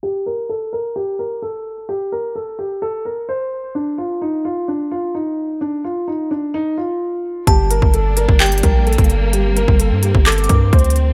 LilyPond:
<<
  \new Staff \with { instrumentName = "Synth bell" } { \time 4/4 \key g \minor \tempo 4 = 129 r1 | r1 | r1 | r1 |
a''2 g''4 r4 | r2 d'''4 r4 | }
  \new Staff \with { instrumentName = "Grand piano" } { \time 4/4 \key g \minor g'8 bes'8 a'8 bes'8 g'8 bes'8 a'4 | g'8 bes'8 a'8 g'8 a'8 bes'8 c''4 | d'8 f'8 ees'8 f'8 d'8 f'8 ees'4 | d'8 f'8 ees'8 d'8 ees'8 f'4. |
g'8 bes'8 a'8 bes'8 g'8 bes'8 a'4 | g'8 bes'8 a'8 g'8 a'8 bes'8 c''4 | }
  \new Staff \with { instrumentName = "String section" } { \time 4/4 \key g \minor << { r1 | r1 | r1 | r1 |
d'1 | c'1 | } \\ { r1 | r1 | r1 | r1 |
<g bes>1~ | <g bes>1 | } >> }
  \new Staff \with { instrumentName = "808-style bass" } { \clef bass \time 4/4 \key g \minor r1 | r1 | r1 | r1 |
g,,8. g,,4 g,,8. bes,,8. g,,8.~ | g,,8. g,,8 g,8 g,,8. g,8 d,4 | }
  \new DrumStaff \with { instrumentName = "Drums" } \drummode { \time 4/4 r4 r4 r4 r4 | r4 r4 r4 r4 | r4 r4 r4 r4 | r4 r4 r4 r4 |
<hh bd>8 hh16 bd16 hh8 hh16 bd16 <hc hh>32 hh32 hh32 hh32 <hh bd>8 hh32 hh32 <hh bd>32 hh32 hh8 | hh8 hh16 bd16 hh8 hh16 bd16 <hc hh>32 hh32 hh32 hh32 <hh bd>8 <hh bd>32 hh32 hh32 hh32 hh8 | }
>>